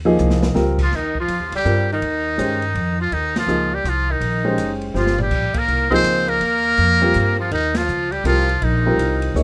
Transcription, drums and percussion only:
0.18 hi-hat pedal medium
0.30 snare medium
0.43 snare medium
0.55 snare medium
0.78 kick medium
0.78 crash medium
0.92 snare soft
1.15 kick medium
1.28 hi-hat pedal soft
1.28 ride medium
1.52 ride medium
1.65 hi-hat pedal medium
2.02 ride medium
2.39 hi-hat pedal medium
2.39 ride medium
2.62 ride soft
2.75 ride medium
3.12 ride medium
3.36 snare medium
3.36 ride medium
3.48 hi-hat pedal medium
3.85 hi-hat pedal medium
3.85 ride medium
4.21 ride medium
4.58 hi-hat pedal soft
4.58 ride medium
4.81 ride soft
4.95 snare soft
5.07 snare medium
5.18 floor tom medium
5.31 kick medium
5.31 crash medium
5.54 kick medium
5.54 ride medium
5.68 hi-hat pedal medium
5.91 kick medium
5.91 ride soft
6.04 hi-hat pedal medium
6.04 ride medium
6.28 ride soft
6.41 ride medium
6.77 ride medium
7.14 hi-hat pedal medium
7.14 ride medium
7.51 ride medium
7.75 snare medium
7.75 ride medium
7.88 hi-hat pedal medium
8.12 ride soft
8.25 hi-hat pedal medium
8.25 ride medium
8.49 ride soft
8.62 ride medium
8.99 hi-hat pedal soft
8.99 ride medium
9.22 ride medium
9.36 hi-hat pedal medium

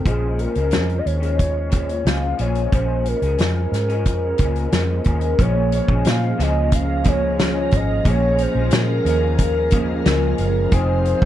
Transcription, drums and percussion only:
0.05 kick loud
0.05 closed hi-hat medium
0.39 closed hi-hat medium
0.55 closed hi-hat soft
0.71 snare medium
0.71 closed hi-hat medium
0.89 closed hi-hat soft
1.07 closed hi-hat medium
1.23 closed hi-hat soft
1.39 kick medium
1.39 closed hi-hat medium
1.71 kick medium
1.71 closed hi-hat medium
1.89 closed hi-hat soft
2.06 snare loud
2.06 closed hi-hat medium
2.39 closed hi-hat medium
2.55 closed hi-hat soft
2.72 kick medium
2.72 closed hi-hat medium
3.05 closed hi-hat medium
3.22 closed hi-hat medium
3.38 snare medium
3.38 closed hi-hat medium
3.73 snare soft
3.73 closed hi-hat medium
3.89 closed hi-hat soft
4.05 kick medium
4.05 closed hi-hat medium
4.38 kick medium
4.38 closed hi-hat medium
4.55 closed hi-hat soft
4.72 snare loud
4.72 closed hi-hat medium
5.04 kick medium
5.04 closed hi-hat medium
5.21 closed hi-hat medium
5.39 kick loud
5.39 closed hi-hat medium
5.72 closed hi-hat medium
5.88 kick medium
6.05 snare loud
6.05 closed hi-hat medium
6.40 snare soft
6.40 closed hi-hat medium
6.72 kick medium
6.72 closed hi-hat loud
7.04 kick medium
7.04 closed hi-hat medium
7.39 snare loud
7.39 closed hi-hat medium
7.71 kick medium
7.71 closed hi-hat medium
8.05 kick loud
8.05 closed hi-hat medium
8.38 closed hi-hat medium
8.71 snare loud
8.71 closed hi-hat medium
9.06 closed hi-hat medium
9.38 kick medium
9.38 closed hi-hat loud
9.71 kick loud
9.71 closed hi-hat loud
10.05 snare loud
10.05 closed hi-hat medium
10.38 closed hi-hat medium
10.72 kick loud
10.72 closed hi-hat medium
11.05 closed hi-hat medium
11.22 kick medium

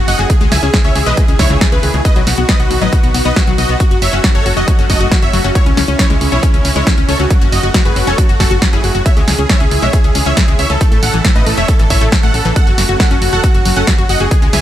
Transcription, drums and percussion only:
0.08 open hi-hat loud
0.19 closed hi-hat soft
0.30 kick loud
0.30 closed hi-hat medium
0.41 closed hi-hat soft
0.52 snare medium
0.52 open hi-hat loud
0.63 closed hi-hat soft
0.74 kick loud
0.74 snare loud
0.74 closed hi-hat medium
0.85 closed hi-hat soft
0.95 open hi-hat loud
1.06 closed hi-hat soft
1.17 kick loud
1.17 closed hi-hat medium
1.28 closed hi-hat soft
1.39 kick medium
1.39 snare medium
1.39 open hi-hat loud
1.50 closed hi-hat soft
1.61 kick loud
1.61 snare loud
1.61 closed hi-hat medium
1.72 closed hi-hat soft
1.83 open hi-hat loud
1.94 closed hi-hat soft
2.05 kick loud
2.05 closed hi-hat medium
2.16 closed hi-hat soft
2.27 snare medium
2.27 open hi-hat loud
2.38 closed hi-hat soft
2.49 kick loud
2.49 snare loud
2.49 closed hi-hat medium
2.60 closed hi-hat soft
2.71 open hi-hat medium
2.82 closed hi-hat soft
2.93 kick loud
2.93 closed hi-hat medium
3.04 closed hi-hat soft
3.14 open hi-hat loud
3.25 closed hi-hat soft
3.36 kick loud
3.36 snare loud
3.36 closed hi-hat medium
3.47 closed hi-hat soft
3.58 open hi-hat loud
3.69 closed hi-hat soft
3.80 kick loud
3.80 closed hi-hat medium
3.91 closed hi-hat soft
4.02 open hi-hat loud
4.13 closed hi-hat soft
4.24 kick loud
4.24 snare loud
4.24 closed hi-hat medium
4.35 closed hi-hat soft
4.46 open hi-hat medium
4.57 closed hi-hat soft
4.68 kick loud
4.68 closed hi-hat medium
4.79 closed hi-hat soft
4.90 kick medium
4.90 open hi-hat loud
5.01 closed hi-hat soft
5.12 kick loud
5.12 snare loud
5.12 closed hi-hat medium
5.23 closed hi-hat soft
5.33 open hi-hat medium
5.44 closed hi-hat soft
5.55 kick loud
5.55 closed hi-hat loud
5.66 closed hi-hat soft
5.77 snare medium
5.77 open hi-hat loud
5.88 closed hi-hat soft
5.99 kick loud
5.99 snare loud
5.99 closed hi-hat loud
6.10 closed hi-hat soft
6.21 open hi-hat medium
6.32 closed hi-hat soft
6.43 kick loud
6.43 closed hi-hat medium
6.54 closed hi-hat soft
6.65 open hi-hat loud
6.76 closed hi-hat soft
6.87 kick loud
6.87 snare loud
6.87 closed hi-hat loud
6.98 closed hi-hat soft
7.09 open hi-hat medium
7.20 closed hi-hat soft
7.30 kick loud
7.30 closed hi-hat loud
7.42 closed hi-hat soft
7.52 open hi-hat loud
7.63 closed hi-hat soft
7.74 kick loud
7.74 snare loud
7.74 closed hi-hat loud
7.85 closed hi-hat soft
7.96 open hi-hat medium
8.07 closed hi-hat soft
8.18 kick loud
8.18 closed hi-hat loud
8.29 closed hi-hat soft
8.40 kick medium
8.40 snare medium
8.40 open hi-hat loud
8.51 closed hi-hat soft
8.62 kick loud
8.62 snare loud
8.62 closed hi-hat loud
8.73 closed hi-hat soft
8.84 open hi-hat medium
8.95 closed hi-hat soft
9.06 kick loud
9.06 closed hi-hat loud
9.17 closed hi-hat soft
9.28 snare medium
9.28 open hi-hat loud
9.39 closed hi-hat soft
9.49 kick loud
9.49 snare loud
9.49 closed hi-hat medium
9.60 closed hi-hat soft
9.71 open hi-hat loud
9.82 closed hi-hat soft
9.93 kick loud
9.93 closed hi-hat loud
10.04 closed hi-hat soft
10.15 open hi-hat loud
10.26 closed hi-hat soft
10.37 kick loud
10.37 snare loud
10.37 closed hi-hat loud
10.48 closed hi-hat soft
10.59 open hi-hat medium
10.70 closed hi-hat soft
10.81 kick loud
10.81 closed hi-hat medium
10.92 closed hi-hat soft
11.03 open hi-hat loud
11.14 closed hi-hat soft
11.25 kick loud
11.25 snare loud
11.25 closed hi-hat medium
11.36 closed hi-hat soft
11.46 open hi-hat loud
11.57 closed hi-hat soft
11.68 kick loud
11.68 closed hi-hat medium
11.79 closed hi-hat soft
11.90 kick medium
11.90 open hi-hat loud
12.01 closed hi-hat soft
12.12 kick loud
12.12 snare loud
12.12 closed hi-hat loud
12.23 closed hi-hat soft
12.34 open hi-hat medium
12.45 closed hi-hat soft
12.56 kick loud
12.56 closed hi-hat medium
12.67 closed hi-hat soft
12.78 snare medium
12.78 open hi-hat loud
12.89 closed hi-hat soft
13.00 kick loud
13.00 snare loud
13.00 closed hi-hat medium
13.11 closed hi-hat soft
13.22 open hi-hat loud
13.44 kick loud
13.44 closed hi-hat medium
13.55 closed hi-hat soft
13.65 open hi-hat loud
13.76 closed hi-hat soft
13.87 kick loud
13.87 snare loud
13.87 closed hi-hat loud
13.98 closed hi-hat soft
14.09 open hi-hat loud
14.20 closed hi-hat soft
14.31 kick loud
14.31 closed hi-hat medium
14.42 closed hi-hat soft
14.53 snare medium
14.53 open hi-hat loud

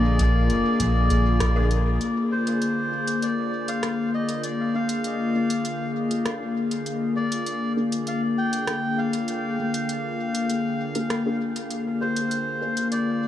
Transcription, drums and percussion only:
0.19 kick loud
0.19 closed hi-hat medium
0.50 closed hi-hat soft
0.80 kick loud
0.80 closed hi-hat medium
1.10 closed hi-hat soft
1.40 kick loud
1.40 cross-stick medium
1.40 closed hi-hat medium
1.71 closed hi-hat soft
2.01 closed hi-hat soft
2.47 closed hi-hat soft
2.62 closed hi-hat soft
3.07 closed hi-hat soft
3.22 closed hi-hat soft
3.68 closed hi-hat soft
3.83 cross-stick medium
3.83 closed hi-hat soft
4.29 closed hi-hat soft
4.44 closed hi-hat soft
4.89 closed hi-hat soft
5.04 closed hi-hat soft
5.50 closed hi-hat soft
5.65 closed hi-hat soft
6.11 closed hi-hat soft
6.26 cross-stick medium
6.26 closed hi-hat soft
6.71 closed hi-hat soft
6.86 closed hi-hat soft
7.32 closed hi-hat soft
7.46 closed hi-hat soft
7.92 closed hi-hat soft
8.07 closed hi-hat soft
8.53 closed hi-hat soft
8.67 cross-stick medium
8.67 closed hi-hat soft
9.13 closed hi-hat soft
9.28 closed hi-hat soft
9.74 closed hi-hat soft
9.89 closed hi-hat soft
10.35 closed hi-hat soft
10.50 closed hi-hat soft
10.95 closed hi-hat soft
11.10 cross-stick medium
11.10 closed hi-hat soft
11.56 closed hi-hat soft
11.71 closed hi-hat soft
12.16 closed hi-hat soft
12.31 closed hi-hat soft
12.77 closed hi-hat soft
12.92 closed hi-hat soft

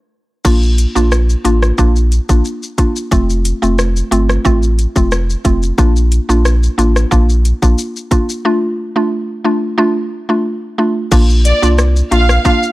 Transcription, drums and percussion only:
0.45 kick loud
0.45 crash medium
0.45 shaker medium
0.63 shaker medium
0.78 closed hi-hat medium
0.78 shaker medium
0.96 shaker medium
1.12 cross-stick loud
1.12 shaker medium
1.30 shaker medium
1.45 closed hi-hat medium
1.45 shaker medium
1.63 cross-stick medium
1.63 shaker medium
1.78 kick medium
1.78 shaker medium
1.96 shaker soft
2.12 closed hi-hat medium
2.12 shaker soft
2.29 kick loud
2.29 shaker medium
2.45 shaker medium
2.63 shaker soft
2.78 kick loud
2.78 closed hi-hat medium
2.78 shaker soft
2.96 shaker medium
3.12 kick loud
3.12 shaker medium
3.30 shaker medium
3.45 closed hi-hat medium
3.45 shaker medium
3.63 shaker medium
3.79 cross-stick loud
3.79 shaker medium
3.96 shaker medium
4.12 closed hi-hat medium
4.12 shaker soft
4.29 cross-stick medium
4.29 shaker medium
4.45 kick medium
4.45 shaker medium
4.63 shaker soft
4.79 closed hi-hat medium
4.79 shaker soft
4.96 kick loud
4.96 shaker medium
5.12 cross-stick medium
5.12 shaker medium
5.30 shaker soft
5.45 kick loud
5.45 closed hi-hat medium
5.45 shaker soft
5.63 shaker medium
5.78 kick loud
5.78 shaker medium
5.96 shaker medium
6.12 closed hi-hat medium
6.12 shaker medium
6.30 shaker medium
6.45 cross-stick medium
6.45 shaker medium
6.63 shaker medium
6.79 closed hi-hat medium
6.79 shaker medium
6.96 cross-stick medium
6.96 shaker medium
7.12 kick medium
7.12 shaker medium
7.29 shaker medium
7.45 closed hi-hat medium
7.45 shaker soft
7.63 kick loud
7.63 shaker medium
7.78 shaker medium
7.96 shaker soft
8.11 kick loud
8.11 closed hi-hat medium
8.11 shaker soft
8.29 shaker medium
11.12 kick loud
11.12 crash loud
11.12 shaker medium
11.30 shaker medium
11.45 closed hi-hat medium
11.45 shaker medium
11.63 shaker medium
11.78 cross-stick loud
11.78 shaker medium
11.96 shaker medium
12.12 closed hi-hat medium
12.12 shaker medium
12.29 cross-stick medium
12.29 shaker medium
12.45 kick medium
12.45 shaker medium
12.63 shaker soft

